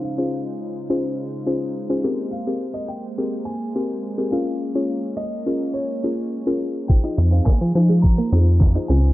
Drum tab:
SH |----------------|----------------|----------------|xxxx-xxxxxxx--xx|
CP |----------------|----------------|----------------|----x-------x---|
SD |----------------|----------------|----------------|----o-------o---|
BD |----------------|----------------|----------------|o---o---o---o---|